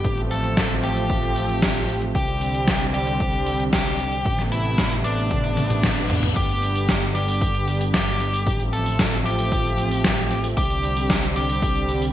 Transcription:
Already playing: lead electric guitar G4
0.04 picked electric bass A1, analog synth pad F3 A3 C4, kick, closed hi-hat
0.18 closed hi-hat
0.31 lead electric guitar A4, open hi-hat
0.44 closed hi-hat
0.57 kick, snare, closed hi-hat
0.70 closed hi-hat
0.83 lead electric guitar G4, open hi-hat
0.97 closed hi-hat
1.10 kick, closed hi-hat
1.23 closed hi-hat
1.36 open hi-hat
1.49 closed hi-hat
1.62 kick, snare, closed hi-hat
1.76 closed hi-hat
1.89 open hi-hat
2.02 closed hi-hat
2.15 picked electric bass C2, analog synth pad D3 G3 C4, lead electric guitar G4, kick, closed hi-hat
2.28 closed hi-hat
2.41 open hi-hat
2.54 closed hi-hat
2.68 kick, snare, closed hi-hat
2.81 closed hi-hat
2.94 lead electric guitar G4, open hi-hat
3.07 closed hi-hat
3.20 kick, closed hi-hat
3.33 closed hi-hat
3.47 open hi-hat
3.60 closed hi-hat
3.73 lead electric guitar G4, kick, snare, closed hi-hat
3.86 closed hi-hat
3.99 open hi-hat
4.12 closed hi-hat
4.25 picked electric bass A1, analog synth pad C3 A3 B3, kick, closed hi-hat
4.39 snare, closed hi-hat
4.52 lead electric guitar E4, open hi-hat
4.65 closed hi-hat
4.78 kick, snare, closed hi-hat
4.91 closed hi-hat
5.04 lead electric guitar D4, open hi-hat
5.18 closed hi-hat
5.31 kick, closed hi-hat, high tom, reverse cymbal
5.44 closed hi-hat, high tom
5.57 open hi-hat, high tom
5.70 closed hi-hat, mid tom
5.83 kick, snare, closed hi-hat, mid tom
5.97 closed hi-hat
6.10 mid tom, open hi-hat
6.23 closed hi-hat, mid tom
6.36 picked electric bass G1, analog synth pad D3 G3, lead electric guitar G4, kick, closed hi-hat, tambourine
6.49 closed hi-hat, tambourine
6.62 open hi-hat
6.76 closed hi-hat, tambourine
6.89 kick, snare, closed hi-hat, tambourine
7.02 closed hi-hat, tambourine
7.15 lead electric guitar G4, open hi-hat
7.28 closed hi-hat, tambourine
7.41 kick, closed hi-hat, tambourine
7.55 closed hi-hat, tambourine
7.68 open hi-hat
7.81 closed hi-hat, tambourine
7.94 lead electric guitar G4, kick, snare, closed hi-hat, tambourine
8.07 closed hi-hat, tambourine
8.20 open hi-hat
8.33 closed hi-hat, tambourine
8.47 picked electric bass A1, analog synth pad F3 A3 C4, kick, closed hi-hat, tambourine
8.60 closed hi-hat, tambourine
8.73 lead electric guitar A4, open hi-hat
8.86 closed hi-hat, tambourine
8.99 kick, snare, closed hi-hat, tambourine
9.12 closed hi-hat, tambourine
9.26 lead electric guitar G4, open hi-hat
9.39 closed hi-hat, tambourine
9.52 kick, closed hi-hat, tambourine
9.65 closed hi-hat, tambourine
9.78 open hi-hat
9.91 closed hi-hat, tambourine
10.04 kick, snare, closed hi-hat, tambourine
10.18 closed hi-hat, tambourine
10.31 open hi-hat
10.44 closed hi-hat, tambourine
10.57 picked electric bass C2, analog synth pad D3 G3 C4, lead electric guitar G4, kick, closed hi-hat, tambourine
10.70 closed hi-hat, tambourine
10.83 open hi-hat
10.97 closed hi-hat, tambourine
11.10 kick, snare, closed hi-hat, tambourine
11.23 closed hi-hat, tambourine
11.36 lead electric guitar G4, open hi-hat
11.49 closed hi-hat, tambourine
11.62 kick, closed hi-hat, tambourine
11.76 closed hi-hat, tambourine
11.89 open hi-hat
12.02 closed hi-hat, tambourine

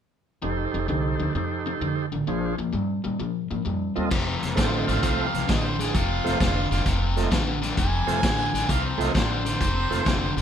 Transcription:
0.42 upright bass F1, overdriven electric guitar F2 C3, tonewheel organ D#4 G4 A4 C5
0.74 upright bass F1, overdriven electric guitar F2 C3
0.88 upright bass C2, overdriven electric guitar F2 D3, tonewheel organ D#4 G4 A4 C5
1.19 upright bass D2, overdriven electric guitar F2 D3
1.35 upright bass F2, overdriven electric guitar F2 C3, tonewheel organ D#4 G4 A4 C5
1.66 overdriven electric guitar F2 C3
1.81 upright bass F2, overdriven electric guitar F2 D3
2.12 upright bass A1, overdriven electric guitar F2 D3
2.27 upright bass A#1, overdriven electric guitar A#2 F3, tonewheel organ D4 F4 G#4 C5
2.58 upright bass F2, overdriven electric guitar A#2 F3
2.73 upright bass G2, overdriven electric guitar A#2 G3
3.04 overdriven electric guitar A#2 G3, upright bass A#2
3.20 overdriven electric guitar A#2 F3, upright bass A#2
3.51 upright bass G#2, overdriven electric guitar A#2 F3
3.65 upright bass F2, overdriven electric guitar A#2 G3
3.95 upright bass D#2, overdriven electric guitar A#2 G3, tonewheel organ C4 F4 A4 D#5
4.11 upright bass F1, overdriven electric guitar F2 C3, kick, crash
4.43 upright bass F1, snare, closed hi-hat
4.55 upright bass A1, overdriven electric guitar F2 D3, tonewheel organ A3 C4 F4 A4 C5, harmonica C5, kick, snare, closed hi-hat
4.74 harmonica D#5
4.87 upright bass A1, overdriven electric guitar F2 D3, harmonica F5, snare, closed hi-hat
5.02 upright bass C2, overdriven electric guitar F2 C3, kick, closed hi-hat
5.34 upright bass C2, snare, closed hi-hat
5.48 upright bass A1, overdriven electric guitar F2 D3, kick, snare, closed hi-hat
5.52 harmonica D#5
5.65 harmonica C5
5.79 overdriven electric guitar F2 D3, harmonica G#4, snare, closed hi-hat
5.94 upright bass F1, overdriven electric guitar F2 C3, harmonica F4, kick, closed hi-hat
6.24 upright bass F1, tonewheel organ A3 C4 F4 A4 C5, snare, closed hi-hat
6.40 upright bass F1, overdriven electric guitar F2 D3, kick, snare, closed hi-hat
6.71 upright bass F1, overdriven electric guitar F2 D3, snare, closed hi-hat
6.85 upright bass F1, overdriven electric guitar F2 C3, kick, snare, closed hi-hat
7.17 tonewheel organ A3 C4 F4 A4 D#5, snare, closed hi-hat
7.30 upright bass A1, overdriven electric guitar F2 D3, kick, snare, closed hi-hat
7.62 overdriven electric guitar F2 D3, snare, closed hi-hat
7.77 upright bass F1, overdriven electric guitar F2 C3, harmonica G#5, kick, closed hi-hat
8.07 upright bass F1, tonewheel organ A3 C4 F4 A4 C5, snare, closed hi-hat
8.23 upright bass A1, overdriven electric guitar F2 D3, kick, snare, closed hi-hat
8.53 upright bass A1, overdriven electric guitar F2 D3, snare, closed hi-hat
8.69 upright bass C2, overdriven electric guitar F2 C3, harmonica F5, kick, closed hi-hat
8.84 harmonica C5
8.98 upright bass C2, tonewheel organ A3 C4 F4 A4 C5, harmonica D#5, snare, closed hi-hat
9.14 upright bass A1, overdriven electric guitar F2 D3, harmonica C5, kick, snare, closed hi-hat
9.31 harmonica C5
9.45 overdriven electric guitar F2 D3, snare, closed hi-hat
9.60 upright bass F1, overdriven electric guitar F2 C3, kick, closed hi-hat
9.90 upright bass F1, tonewheel organ A3 C4 F4 A4 C5, snare, closed hi-hat
10.05 upright bass F1, overdriven electric guitar F2 D3, kick, snare, closed hi-hat
10.37 upright bass F1, overdriven electric guitar F2 D3, closed hi-hat

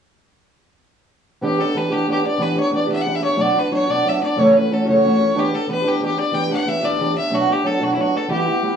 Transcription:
1.41 steel-string acoustic guitar E3 B3 D4 G4, fiddle G4
1.58 steel-string acoustic guitar B3 D4 G4, fiddle A4
1.74 steel-string acoustic guitar E3 B3 D4 G4, fiddle B4
1.90 steel-string acoustic guitar E3 B3 D4 G4, fiddle G4
2.07 steel-string acoustic guitar E3 B3 D4 G4
2.11 fiddle G4
2.23 steel-string acoustic guitar B3 D4 G4
2.27 fiddle D5
2.38 steel-string acoustic guitar E3 B3 D4 G4
2.42 fiddle B4
2.55 steel-string acoustic guitar B3 D4 G4
2.60 fiddle C#5
2.70 steel-string acoustic guitar E3 B3 D4 G4
2.75 fiddle D5
2.87 steel-string acoustic guitar E3 B3 D4 G4
2.92 fiddle E5
3.01 steel-string acoustic guitar E3, fiddle F#5
3.06 steel-string acoustic guitar B3 D4 G4
3.15 fiddle E5
3.20 steel-string acoustic guitar B3 D4 G4, fiddle C#5
3.36 steel-string acoustic guitar B2 F#3 B3 D4 F#4
3.41 fiddle D5
3.54 steel-string acoustic guitar B3 D4 F#4
3.59 fiddle B4
3.70 steel-string acoustic guitar F#3 B3 D4 F#4, fiddle C#5
3.87 steel-string acoustic guitar B2 F#3 B3 D4 F#4, fiddle D5
4.04 steel-string acoustic guitar F#3 B3 D4 F#4, fiddle E5
4.20 steel-string acoustic guitar B3 D4 F#4, fiddle D5
4.36 steel-string acoustic guitar F#2 C#3 E3 A3 C#4 F#4, fiddle C#5
4.50 steel-string acoustic guitar C#4 F#4, fiddle C#5
4.55 steel-string acoustic guitar E3 A3, fiddle B4
4.69 steel-string acoustic guitar E3 A3 C#4 F#4, fiddle A4
4.85 steel-string acoustic guitar F#2 C#3 E3 A3 C#4 F#4, fiddle C#5
5.02 steel-string acoustic guitar E3 A3 C#4 F#4
5.18 steel-string acoustic guitar E3 A3 C#4 F#4
5.34 steel-string acoustic guitar E3 B3 D4 G4
5.38 fiddle G4
5.51 steel-string acoustic guitar B3 D4 G4, fiddle A4
5.67 steel-string acoustic guitar E3 B3 D4 G4
5.71 fiddle B4
5.82 steel-string acoustic guitar E3 B3 D4 G4
5.87 fiddle G4
6.00 steel-string acoustic guitar E3 B3 D4 G4
6.05 fiddle G4
6.15 steel-string acoustic guitar B3 D4 G4
6.20 fiddle D5
6.31 steel-string acoustic guitar E3 B3 D4 G4, fiddle G5
6.49 steel-string acoustic guitar B3 D4 G4, fiddle F#5
6.65 steel-string acoustic guitar E3 B3 D4 G4, fiddle E5
6.81 steel-string acoustic guitar E3 B3 D4 G4
6.85 fiddle D5
6.98 steel-string acoustic guitar E3 B3 D4 G4
7.14 steel-string acoustic guitar B3 D4 G4, fiddle E5
7.30 steel-string acoustic guitar B2 F#3 B3 D4 F#4
7.34 fiddle F#4
7.47 steel-string acoustic guitar B3 D4 F#4
7.52 fiddle G4
7.63 steel-string acoustic guitar F#3 B3 D4 F#4, fiddle A4
7.79 steel-string acoustic guitar B2 F#3 B3 D4 F#4, fiddle F#4
7.94 steel-string acoustic guitar F#3 B3 D4, fiddle E4
7.99 steel-string acoustic guitar F#4, fiddle F#4
8.12 steel-string acoustic guitar B3 D4 F#4
8.17 fiddle A4
8.28 steel-string acoustic guitar E3 G3 B3 E4 F#4, fiddle G4
8.46 steel-string acoustic guitar B3 E4 F#4
8.62 steel-string acoustic guitar G3 B3 E4 F#4

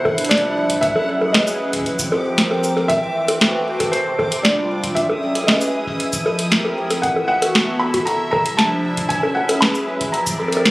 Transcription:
Already playing: analog synth pad C3 A4, synth texture E4 F#5, felt piano C5
0.05 kick, high bongo
0.13 analog synth pad D4
0.18 analog synth pad G3, closed hi-hat
0.25 analog synth pad F3, closed hi-hat
0.29 felt piano D5, snare, closed hi-hat
0.37 closed hi-hat
0.70 kick, closed hi-hat
0.76 kick
0.81 analog synth pad F#3, felt piano E5, kick, closed hi-hat
0.89 kick
0.96 analog synth pad C#4, high bongo
1.12 analog synth pad G#4
1.21 high bongo
1.29 analog synth pad B4, felt piano D#5
1.34 snare, closed hi-hat
1.47 shaker
1.73 kick, closed hi-hat
1.76 kick
1.78 kick
1.81 kick
1.83 analog synth pad F3, synth texture C4 D6, kick, closed hi-hat
1.97 analog synth pad C4, kick, shaker
2.07 analog synth pad G4
2.12 high bongo
2.33 analog synth pad A#4
2.38 snare, closed hi-hat
2.51 high bongo
2.64 shaker
2.77 high bongo
2.88 analog synth pad E3, felt piano E5, kick, closed hi-hat
3.28 closed hi-hat, high bongo
3.36 analog synth pad F#4 A4 B4
3.41 snare, closed hi-hat
3.80 kick, closed hi-hat, high bongo
3.92 analog synth pad C3, felt piano C5, closed hi-hat
4.19 kick, high bongo
4.32 closed hi-hat
4.40 analog synth pad G3 D4 F4, felt piano D5
4.45 snare, closed hi-hat
4.84 kick, closed hi-hat
4.95 analog synth pad F#3, synth texture E4 D#6, felt piano E5, kick, closed hi-hat
5.09 high bongo
5.14 analog synth pad C#4
5.35 closed hi-hat, high bongo
5.41 analog synth pad G#4 B4, high bongo
5.47 felt piano D#5, snare, closed hi-hat
5.53 high bongo
5.61 shaker
5.87 kick
6.00 analog synth pad F3, closed hi-hat
6.13 kick, shaker
6.26 high bongo
6.39 closed hi-hat
6.44 analog synth pad C4 G4 A#4
6.52 snare, closed hi-hat
6.65 high bongo
6.91 closed hi-hat, high bongo
7.02 analog synth pad E3, synth texture E4 E5, felt piano F#5, kick, closed hi-hat
7.16 high bongo
7.28 felt piano F#5
7.37 analog synth pad F#4
7.42 closed hi-hat, high bongo
7.50 analog synth pad B3 A4
7.55 snare, closed hi-hat
7.80 felt piano B5
7.94 kick, closed hi-hat, high bongo
8.05 analog synth pad C3, felt piano A#5, closed hi-hat
8.31 felt piano A#5, kick, high bongo
8.46 analog synth pad G3, closed hi-hat
8.54 analog synth pad F3 D4, felt piano A5
8.59 snare, closed hi-hat
8.97 kick, closed hi-hat
9.09 analog synth pad F#3, felt piano G#5, kick, closed hi-hat
9.19 analog synth pad C#4
9.23 high bongo
9.35 felt piano F#5
9.49 analog synth pad G#4, closed hi-hat, high bongo
9.57 analog synth pad B4, felt piano B5
9.62 snare, closed hi-hat
9.75 shaker
10.01 kick, closed hi-hat
10.12 analog synth pad F3, synth texture D4 D5, felt piano A#5, closed hi-hat
10.27 kick, shaker
10.36 analog synth pad C4 A#4, high bongo
10.48 high bongo
10.52 analog synth pad G4, closed hi-hat
10.57 high bongo
10.65 snare, closed hi-hat

